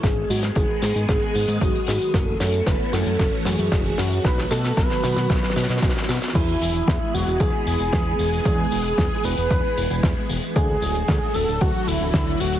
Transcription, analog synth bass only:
X:1
M:4/4
L:1/16
Q:1/4=114
K:Bmix
V:1 name="Analog synth bass" clef=bass
G,,,2 G,,2 G,,, z G,, G,, G,,, z G,, G,, G,,, z G,, z | F,,,2 F,,2 F,,, z F,, F,, F,,, z F,, F,, F,,,2 F,,2 | B,,,2 B,,2 B,,, z B,, B,, B,,, z B,, B,, B,,, z B,, z | [K:Emix] E,,2 E,,,2 E,, z E,,, E,,, E,, z E,,, E,,, E,,2 E,,,2 |
E,,2 E,,,2 E,, z E,,, E,,, E,, z E,,, E,,, E,, z E,,, z | D,,2 D,,,2 D,, z D,,, D,,, D,, z D,,, D,,, D,,2 D,,,2 |]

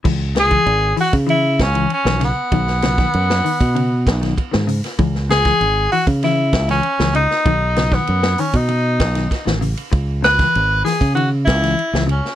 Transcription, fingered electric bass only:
X:1
M:4/4
L:1/16
Q:1/4=97
K:C#m
V:1 name="Fingered electric bass" clef=bass
C,,4 G,,,2 z C,3 C,,2 z B,,,2 z | B,,,4 F,,2 z B,,3 B,,,2 z G,,2 z | C,,4 G,,,2 z C,3 C,,2 z C,,2 z | B,,,4 F,,2 z B,,3 B,,,2 z A,,,2 z |
C,,4 G,,,2 z C,3 C,,2 z C,,2 z |]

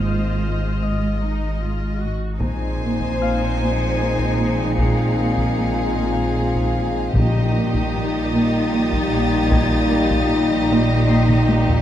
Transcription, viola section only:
X:1
M:3/4
L:1/8
Q:1/4=76
K:Abmix
V:1 name="Viola section"
[Fc]2 F E F G | E6- | E6 | E6- |
E6 |]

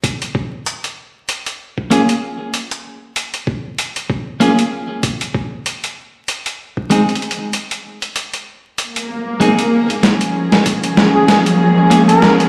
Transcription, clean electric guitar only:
X:1
M:4/4
L:1/8
Q:"Swing 16ths" 1/4=96
K:Bbm
V:1 name="Clean electric guitar"
z6 [B,DFA] z | z6 [B,DFA] z | z6 [A,CEA] z | z6 [A,CEA] z |
z6 [B,DFA] z |]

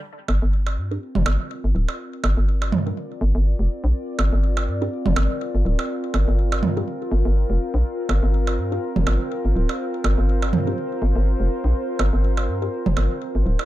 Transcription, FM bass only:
X:1
M:4/4
L:1/16
Q:"Swing 16ths" 1/4=123
K:Gm
V:1 name="FM bass" clef=bass
z2 G,,, G,,,3 G,,2 z F,,, G,,, z2 G,,, D,,, z | z2 G,,, G,,,3 G,,2 z2 G,,, G,,,2 F,,, z B,,, | z2 G,,, G,,,3 G,,2 z F,,, G,,, z2 G,,, D,,, z | z2 G,,, G,,,3 G,,2 z2 G,,, G,,,2 F,,, z B,,, |
z2 G,,, G,,,3 G,,2 z F,,, G,,, z2 G,,, D,,, z | z2 G,,, G,,,3 G,,2 z2 G,,, G,,,2 F,,, z B,,, | z2 G,,, G,,,3 G,,2 z F,,, G,,, z2 G,,, D,,, z |]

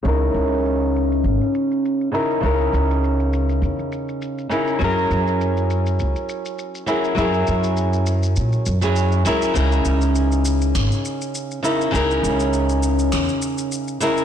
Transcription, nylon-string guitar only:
X:1
M:4/4
L:1/16
Q:"Swing 16ths" 1/4=101
K:C#dor
V:1 name="Nylon-string guitar"
[C,CDEA]12- [C,CDEA]2 [C,CDEA]2 | [C,CDEA]12- [C,CDEA]2 [C,CDEA]2 | [F,CEGA]12- [F,CEGA]2 [F,CEGA]2 | [F,CEGA]8- [F,CEGA]3 [F,CEGc]3 [F,CEGA]2 |
[C,CDEA]12- [C,CDEA]2 [C,CDEA]2 | [C,CDEA]12- [C,CDEA]2 [C,CDEA]2 |]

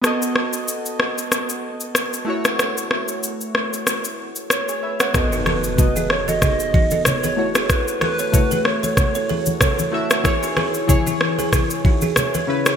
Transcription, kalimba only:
X:1
M:4/4
L:1/16
Q:"Swing 16ths" 1/4=94
K:Bmix
V:1 name="Kalimba"
z16 | z16 | z [DF] [FA] z2 [EG] z [FA] [DG] z [DF] [FA] z [GB] z [EG] | z2 [FA] [Ac] z [GB] z [Ac] z [Ac] [GB] z [Ac]2 z2 |
z [DF] [GB] z2 [EG] z [GB] [EG] z [DF] [EG] z [GB] z [EG] |]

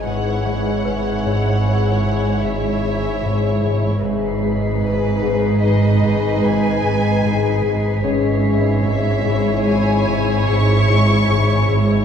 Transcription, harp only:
X:1
M:5/4
L:1/8
Q:1/4=75
K:C#dor
V:1 name="Harp" clef=bass
[G,,G,] G, G,, G,, G, G,, G,, G,, G,, G,, | G,, G, G,, G,, G, G,, G,, G,, G,, G,, | G,, G, G,, G,, G, G,, G,, G,, G,, G,, |]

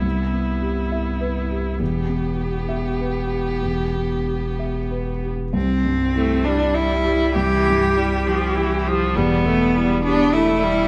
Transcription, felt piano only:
X:1
M:3/4
L:1/8
Q:1/4=100
K:C
V:1 name="Felt piano"
[C,,G] B, G e B G | E,, B, G e B G | E,, B, G e B G | C,, G,, E G E G |
C,, G,, E G E G | E,, B,, E G E G |]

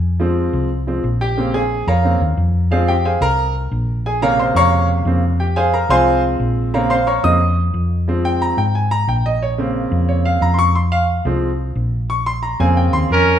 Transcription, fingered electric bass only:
X:1
M:4/4
L:1/8
Q:1/4=179
K:Fm
V:1 name="Fingered electric bass" clef=bass
F,,3 C,,3 B,,,2- | B,,,3 F,,2 E,, F,,2- | F,,3 C,,3 B,,,2- | B,,,3 F,,3 F,,2- |
F,,3 C,,3 B,,,2- | B,,,3 F,,3 F,,2- | F,,3 A,,3 B,,,2- | B,,,3 F,,3 F,,2- |
F,,3 C,,3 B,,,2- | B,,,3 F,,2 E,, F,,2 |]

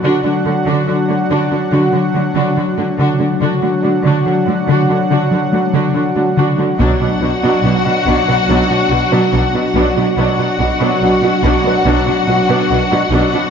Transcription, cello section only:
X:1
M:4/4
L:1/16
Q:1/4=71
K:Bm
V:1 name="Cello section" clef=bass
D, D, D, D, D, D, D, D, D, D, D, D, D, D, D, D, | D, D, D, D, D, D, D, D, D, D, D, D, D, D, D, D, | B,, B,, B,, B,, B,, B,, B,, B,, B,, B,, B,, B,, B,, B,, B,, B,, | B,, B,, B,, B,, B,, B,, B,, B,, B,, B,, B,, B,, B,, B,, B,, B,, |]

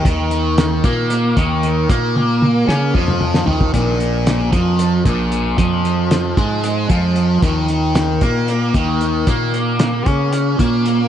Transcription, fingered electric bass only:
X:1
M:7/8
L:1/8
Q:1/4=114
K:Eb
V:1 name="Fingered electric bass" clef=bass
E,,3 B,,2 E,,2 | B,,3 _D, F,,2 E,, | B,,,3 F,,2 B,,,2 | F,,3 A,,2 F,,2 |
E,,3 B,,2 E,,2 | B,,3 _D,2 B,,2 |]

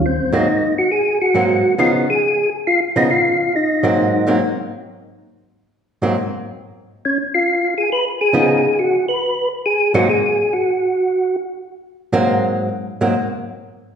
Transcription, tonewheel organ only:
X:1
M:4/4
L:1/8
Q:"Swing" 1/4=137
K:Abmix
V:1 name="Tonewheel organ"
C E2 G A G3 | F A2 z F E F2 | E4 z4 | z8 |
D F2 A _c A3 | G _c2 z A G A2 | G4 z4 | z8 |]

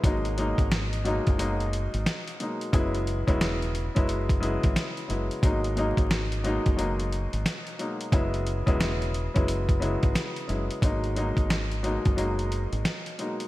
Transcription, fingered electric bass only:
X:1
M:4/4
L:1/16
Q:"Swing 16ths" 1/4=89
K:G#m
V:1 name="Fingered electric bass" clef=bass
G,,,3 G,,,4 F,,,4 G,,, z4 | F,,,3 E,,,4 F,,,4 G,,, z2 F,,, z | G,,,3 G,,,4 F,,,4 G,,, z4 | F,,,3 E,,,4 F,,,4 G,,, z2 F,,, z |
G,,,3 G,,,4 F,,,4 G,,, z4 |]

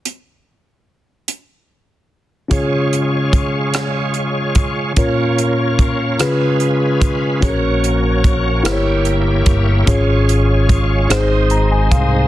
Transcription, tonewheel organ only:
X:1
M:6/8
L:1/8
Q:3/8=49
K:Db
V:1 name="Tonewheel organ"
z6 | [A,DFd]6 | [B,DFd]3 [A,DFB_c]3 | [B,DGd]3 [B,=E=Gd]3 |
[A,DFcd]3 [A,CEc]3 |]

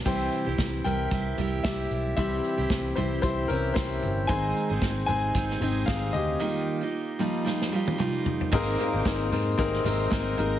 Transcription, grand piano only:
X:1
M:4/4
L:1/16
Q:"Swing 16ths" 1/4=113
K:Cphr
V:1 name="Grand piano"
[cg]6 [Bg]6 [G=e]4 | [G=e]6 [=Ec]2 [Ec]2 [DB]2 [Ec]3 z | [ca]6 [ca]6 [Af]2 [Ge]2- | [Ge]12 z4 |
[B,CEAB]2 [B,CEAB]2 [B,CEAB]2 [B,CEAB]2 [B,CEAB]2 [B,CEAB]2 [B,CEAB]2 [B,CEAB]2 |]
V:2 name="Grand piano" clef=bass
[=E,G,C]6 z8 z2 | [=E,G,C]6 [E,G,C]2 z8 | [E,A,C]2 z8 [E,A,C]2 z4 | z6 [F,G,E]6 z4 |
A,,6 z8 z2 |]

